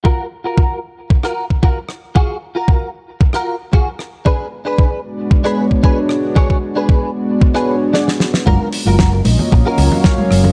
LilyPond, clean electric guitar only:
\new Staff \with { instrumentName = "Clean electric guitar" } { \time 4/4 \key fis \major \tempo 4 = 114 <eis' fis' ais'>8 r16 <eis' fis' ais'>8. r8. <eis' fis' ais'>16 r8 <eis' fis' ais'>16 r8. | <eis' fis' gis'>8 r16 <eis' fis' ais'>8. r8. <eis' fis' ais'>16 r8 <eis' fis' gis'>16 r8. | <d' gis' b'>8 r16 <d' gis' b'>8. r8. <d' gis' b'>16 r8 <d' gis' b'>16 r8. | <d' gis' cis''>8 r16 <d' gis' b'>8. r8. <d' gis' b'>16 r8 <d' gis' d''>16 r8. |
<eis' fis' ais'>8 r16 <eis' fis' ais'>8. r8. <eis' fis' ais'>8. r4 | }